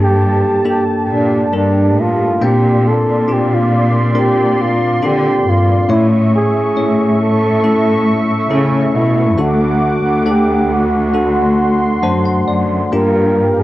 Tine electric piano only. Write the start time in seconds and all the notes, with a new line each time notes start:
Already playing: G2 A#3 D4 G4 A4 A#4
0.65 A#3 D4 G4 A4
1.52 G3 D4 G4 A#4
2.42 A#2 A#3 C4 D4 F4
3.28 C4 D4 F4 G4
4.15 C4 D4 F4 A#4
5.03 C4 D4 F4 A4
5.89 A2 A3 C#4 E4 C#5
6.76 A3 C#4 E4 C#5
7.64 A3 C#4 E4 A4
8.50 A3 C#4 E4 A4
9.37 D3 A3 D4 F#4 A4
10.26 A3 D4 A4 F#5
11.14 A3 D4 F#4 A4
12.03 A3 D4 F#4 C5 A5
12.26 F#5
12.48 D5
12.92 G2 A#3 D4 F4 G4